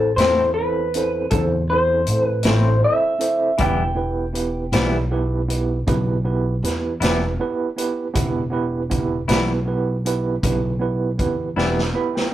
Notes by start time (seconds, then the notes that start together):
Already playing: A1 C4 E4 A4 C5
0.16 E2 C4 E4 C5, snare, closed hi-hat
0.20 A2 A3 C4 E4 A4 C5
0.54 B4
0.59 C4 E4 A4 C5
0.94 C4 E4 A4 C5, closed hi-hat
1.31 E2 C4 E4 A4, kick, closed hi-hat
1.35 C5
1.70 C4 E4 A4 C5
2.07 A2 C4 E4, closed hi-hat
2.11 A4 C5
2.24 B4
2.43 A1 A3 C4 E4 A4, snare, closed hi-hat
2.47 A2 C5
2.82 C4 E4 A4 C5 E5
3.19 C4 E4 A4 C5, closed hi-hat
3.58 E1 E3 G3 B3 E4 G4 B4, kick, closed hi-hat
3.62 G5
3.95 B3 E4 G4 B4
4.33 B3 E4 G4 B4, closed hi-hat
4.72 B1 E3 G3 B3 E4 G4 B4, snare, closed hi-hat
5.11 B3 E4 G4 B4
5.48 B3 E4 G4 B4, closed hi-hat
5.87 B1 B3 E4 G4 B4, kick, closed hi-hat
6.24 B3 E4 G4 B4
6.63 E2 B3 E4 G4 B4, closed hi-hat
6.67 snare
7.00 E1 E3 G3 B3 E4 G4 B4, snare, closed hi-hat
7.40 B3 E4 G4 B4
7.76 B3 E4 G4 B4, closed hi-hat
8.14 E1 B3 E4 G4 B4, kick, closed hi-hat
8.50 B3 E4 G4 B4
8.90 B3 E4 G4 B4, kick, closed hi-hat
9.28 B1 E3 G3 B3 E4 G4 B4, snare, closed hi-hat
9.66 B3 E4 G4 B4
10.05 B3 E4 G4 B4, closed hi-hat
10.43 B1 B3 E4 G4 B4, kick, closed hi-hat
10.80 B3 E4 G4 B4
11.18 E2 B3 E4 G4 B4, kick, closed hi-hat
11.56 E1 E3 G3 B3 E4 G4 B4, snare
11.79 snare
11.94 B3 E4 G4 B4 B5
12.15 G5, snare